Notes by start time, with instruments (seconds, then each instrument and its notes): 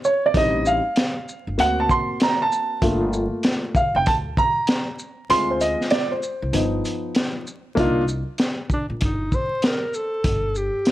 0.04 grand piano C#5, shaker
0.26 grand piano D5
0.34 upright bass A1, grand piano G3 C4 D#4 D#5, kick, closed hi-hat
0.66 grand piano F5, shaker
0.96 snare, closed hi-hat
1.29 shaker
1.47 upright bass G1
1.58 upright bass D2, grand piano A#3 C4 F#4 F#5, closed hi-hat
1.80 grand piano A5
1.89 grand piano C6, kick, shaker
2.20 grand piano A#5, snare, closed hi-hat
2.42 grand piano A5
2.52 shaker
2.82 upright bass G1, grand piano A3 A#3 F4, kick, closed hi-hat
3.13 shaker
3.43 snare, closed hi-hat
3.75 grand piano F5, kick, shaker
3.95 upright bass F1, grand piano G5
4.06 upright bass D2, grand piano A5, kick, closed hi-hat
4.37 grand piano A#5, kick, shaker
4.67 snare, closed hi-hat
4.99 shaker
5.29 upright bass D2, grand piano G#3 C4 F4 C6, closed hi-hat
5.51 grand piano C5
5.61 grand piano D#5, closed hi-hat, shaker
5.81 snare
5.90 grand piano D5, snare, closed hi-hat
6.11 grand piano C5
6.23 shaker
6.42 upright bass C2
6.53 upright bass G1, grand piano F3 B3 D#4, closed hi-hat
6.85 closed hi-hat, shaker
7.15 snare, closed hi-hat
7.47 shaker
7.75 upright bass C2, grand piano A#3 D4 D#4, kick, closed hi-hat
7.79 grand piano F4
8.08 shaker
8.38 snare, closed hi-hat
8.70 kick, shaker
8.74 alto saxophone D4
8.90 upright bass A#1
9.01 upright bass G1, kick, closed hi-hat
9.05 alto saxophone D#4
9.32 alto saxophone C5, kick, shaker
9.62 snare, closed hi-hat
9.66 alto saxophone A#4
9.94 alto saxophone A4, shaker
10.24 upright bass G1, kick, closed hi-hat
10.55 alto saxophone G4, shaker
10.85 snare, closed hi-hat